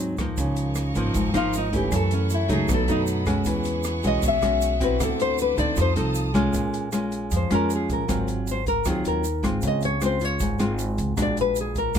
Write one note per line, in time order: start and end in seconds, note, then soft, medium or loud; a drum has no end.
0.00 0.34 D#2 medium
0.00 0.36 G#2 medium
0.00 0.15 F#3 medium
0.00 0.16 C4 medium
0.00 0.16 D#4 medium
0.18 0.93 F3 soft
0.18 0.93 A#3 medium
0.18 0.93 D#4 medium
0.18 kick medium
0.18 cross-stick medium
0.18 closed hi-hat soft
0.18 shaker soft
0.37 0.92 C#2 medium
0.37 1.13 C#3 medium
0.37 1.91 A#4 medium
0.37 1.91 D#5 medium
0.37 1.91 F5 medium
0.37 1.91 C#6 medium
0.37 kick medium
0.37 closed hi-hat medium
0.37 shaker medium
0.56 closed hi-hat soft
0.56 shaker soft
0.75 cross-stick soft
0.75 closed hi-hat soft
0.75 shaker medium
0.95 1.14 G#1 medium
0.95 1.31 F3 medium
0.95 1.32 A#3 medium
0.95 1.32 D#4 medium
0.95 closed hi-hat soft
0.95 shaker soft
1.14 1.33 G#1 medium
1.14 1.90 G#2 medium
1.14 kick soft
1.14 closed hi-hat medium
1.14 shaker medium
1.34 1.88 G#1 medium
1.34 1.69 F3 medium
1.34 1.69 A#3 medium
1.34 1.70 D#4 medium
1.34 1.54 F4 medium
1.34 cross-stick medium
1.34 closed hi-hat soft
1.34 shaker soft
1.53 closed hi-hat soft
1.53 shaker medium
1.57 1.74 D#4 medium
1.72 2.47 E3 soft
1.72 2.47 A3 medium
1.72 2.47 C#4 medium
1.72 1.93 G4 medium
1.72 kick medium
1.72 closed hi-hat soft
1.72 shaker soft
1.91 2.67 F#2 medium
1.91 2.46 F#2 medium
1.91 3.45 A4 medium
1.91 2.12 A4 medium
1.91 2.68 E5 medium
1.91 2.68 F#5 medium
1.91 2.68 C#6 medium
1.91 kick medium
1.91 cross-stick medium
1.91 closed hi-hat medium
1.91 shaker medium
2.11 2.31 C#4 medium
2.11 closed hi-hat soft
2.11 shaker soft
2.30 closed hi-hat soft
2.30 shaker medium
2.34 2.51 E4 medium
2.48 2.68 C#2 medium
2.48 2.85 F#3 medium
2.48 2.85 A3 medium
2.48 2.85 D#4 medium
2.48 kick medium
2.48 closed hi-hat soft
2.48 shaker soft
2.53 2.70 G#4 medium
2.68 2.87 B1 medium
2.68 3.44 B2 medium
2.68 3.45 D#5 medium
2.68 5.74 F#5 medium
2.68 3.45 B5 medium
2.68 kick soft
2.68 cross-stick medium
2.68 closed hi-hat soft
2.68 shaker medium
2.74 2.90 A4 medium
2.88 3.42 F#2 medium
2.88 3.24 F#3 medium
2.88 3.24 A3 medium
2.88 3.24 D#4 medium
2.88 3.02 D#4 medium
2.88 closed hi-hat soft
2.88 shaker soft
3.07 closed hi-hat soft
3.07 shaker medium
3.26 4.00 G#3 medium
3.26 4.01 C#4 medium
3.26 4.01 F#4 medium
3.26 kick medium
3.26 cross-stick medium
3.26 closed hi-hat soft
3.26 shaker soft
3.44 4.00 E2 medium
3.44 4.21 E3 medium
3.44 4.99 G#4 medium
3.44 5.75 E5 medium
3.44 4.99 C#6 medium
3.44 kick medium
3.44 closed hi-hat medium
3.44 shaker medium
3.64 closed hi-hat soft
3.64 shaker soft
3.84 cross-stick medium
3.84 closed hi-hat soft
3.84 shaker medium
4.03 4.22 B1 medium
4.03 4.39 G#3 medium
4.03 4.39 C#4 medium
4.03 4.40 F#4 medium
4.03 closed hi-hat soft
4.03 shaker soft
4.07 4.24 D#5 medium
4.22 4.41 B1 medium
4.22 4.98 B2 medium
4.22 kick soft
4.22 closed hi-hat medium
4.22 shaker medium
4.28 4.79 E5 medium
4.42 4.96 B1 medium
4.42 4.77 G#3 medium
4.42 4.78 C#4 medium
4.42 4.78 F#4 medium
4.42 cross-stick medium
4.42 closed hi-hat soft
4.42 shaker soft
4.61 closed hi-hat soft
4.61 shaker medium
4.80 5.55 C4 medium
4.80 5.55 E4 medium
4.80 5.55 F#4 medium
4.80 5.01 B4 medium
4.80 kick medium
4.80 closed hi-hat soft
4.80 shaker soft
5.00 5.54 D2 medium
5.00 5.75 D3 medium
5.00 5.20 A4 medium
5.00 6.53 C5 medium
5.00 5.76 D6 medium
5.00 kick medium
5.00 cross-stick medium
5.00 closed hi-hat medium
5.00 shaker medium
5.20 5.39 C5 medium
5.20 closed hi-hat soft
5.20 shaker soft
5.38 5.59 B4 medium
5.38 closed hi-hat soft
5.38 shaker medium
5.57 5.76 D2 medium
5.57 5.93 C4 medium
5.57 5.93 D#4 medium
5.57 5.93 A4 medium
5.57 5.77 D5 medium
5.57 kick medium
5.57 closed hi-hat soft
5.57 shaker soft
5.76 5.95 F2 medium
5.76 6.33 F3 medium
5.76 6.53 F5 medium
5.76 6.53 A5 medium
5.76 6.53 D#6 medium
5.76 kick soft
5.76 cross-stick soft
5.76 closed hi-hat soft
5.76 shaker medium
5.82 5.92 C5 medium
5.96 6.50 C2 medium
5.96 6.32 C4 medium
5.96 6.32 D#4 medium
5.96 6.32 A4 medium
5.96 closed hi-hat soft
5.96 shaker soft
6.15 closed hi-hat soft
6.15 shaker medium
6.34 6.91 G#3 medium
6.34 6.91 C#4 medium
6.34 6.91 F4 medium
6.34 kick medium
6.34 cross-stick medium
6.34 closed hi-hat soft
6.34 shaker soft
6.52 7.28 A#1 medium
6.52 7.29 A#2 soft
6.52 kick medium
6.52 closed hi-hat soft
6.52 shaker medium
6.74 closed hi-hat soft
6.74 shaker soft
6.92 7.47 G#3 soft
6.92 7.47 C#4 soft
6.92 7.48 F4 medium
6.92 cross-stick medium
6.92 closed hi-hat soft
6.92 shaker medium
7.12 closed hi-hat soft
7.12 shaker soft
7.31 7.50 F2 medium
7.31 8.07 F3 medium
7.31 kick soft
7.31 closed hi-hat medium
7.31 shaker medium
7.36 7.53 C5 medium
7.51 7.87 F2 medium
7.51 8.06 G#3 medium
7.51 8.06 C#4 medium
7.51 8.06 F4 medium
7.51 7.71 A#4 medium
7.51 cross-stick medium
7.51 closed hi-hat soft
7.51 shaker soft
7.70 closed hi-hat soft
7.70 shaker medium
7.75 7.91 G#4 medium
7.89 8.08 A#1 medium
7.89 8.27 A#4 medium
7.89 kick soft
7.89 closed hi-hat soft
7.89 shaker soft
8.08 8.82 G#1 medium
8.08 8.84 G#2 medium
8.08 8.60 F#3 medium
8.08 8.60 C4 soft
8.08 8.61 F4 medium
8.08 kick soft
8.08 cross-stick medium
8.08 closed hi-hat medium
8.08 shaker soft
8.28 closed hi-hat soft
8.28 shaker soft
8.47 closed hi-hat soft
8.47 shaker medium
8.51 8.68 C5 medium
8.66 8.86 A#4 medium
8.66 kick soft
8.66 closed hi-hat soft
8.66 shaker soft
8.85 9.04 D#2 medium
8.85 9.61 D#3 soft
8.85 9.24 F#3 medium
8.85 9.24 C4 medium
8.85 9.25 F4 medium
8.85 kick medium
8.85 cross-stick soft
8.85 closed hi-hat soft
8.85 shaker medium
8.90 9.07 G#4 medium
9.05 9.41 D#2 medium
9.05 9.42 A#4 medium
9.05 closed hi-hat soft
9.05 shaker soft
9.24 closed hi-hat soft
9.24 shaker medium
9.43 9.62 G#1 medium
9.43 9.98 G#3 medium
9.43 9.98 C4 medium
9.43 9.98 F4 medium
9.43 kick soft
9.43 cross-stick medium
9.43 closed hi-hat soft
9.43 shaker soft
9.62 10.36 C#2 medium
9.62 10.38 C#3 soft
9.62 kick soft
9.62 closed hi-hat soft
9.62 shaker medium
9.67 9.84 D#5 medium
9.81 closed hi-hat soft
9.81 shaker soft
9.85 10.02 C#5 medium
10.01 10.18 G#3 medium
10.01 10.18 C4 medium
10.01 10.18 F4 soft
10.01 cross-stick medium
10.01 closed hi-hat soft
10.01 shaker medium
10.06 10.25 C5 medium
10.20 10.57 G#3 medium
10.20 10.57 F4 medium
10.20 closed hi-hat soft
10.20 shaker soft
10.25 10.61 C#5 medium
10.40 10.58 G#1 medium
10.40 11.16 G#2 medium
10.40 kick soft
10.40 closed hi-hat medium
10.40 shaker medium
10.59 10.96 G#1 medium
10.59 11.14 G#3 medium
10.59 11.14 C4 medium
10.59 11.14 F4 medium
10.59 cross-stick soft
10.59 closed hi-hat soft
10.59 shaker soft
10.79 closed hi-hat soft
10.79 shaker medium
10.98 11.16 C#2 medium
10.98 kick medium
10.98 closed hi-hat soft
10.98 shaker soft
11.17 11.91 A#1 medium
11.17 11.92 A#2 medium
11.17 11.91 G#3 medium
11.17 11.91 D4 medium
11.17 11.92 F#4 medium
11.17 kick medium
11.17 cross-stick medium
11.17 closed hi-hat medium
11.17 shaker medium
11.22 11.39 D5 medium
11.37 11.58 B4 medium
11.37 closed hi-hat soft
11.37 shaker soft
11.56 closed hi-hat soft
11.56 shaker medium
11.61 11.77 G#4 medium
11.75 11.95 A#4 medium
11.75 kick soft
11.75 closed hi-hat soft
11.75 shaker soft
11.94 11.99 F#2 medium
11.94 11.99 A#2 medium
11.94 11.99 G#3 medium
11.94 kick medium
11.94 cross-stick medium
11.94 closed hi-hat medium
11.94 shaker medium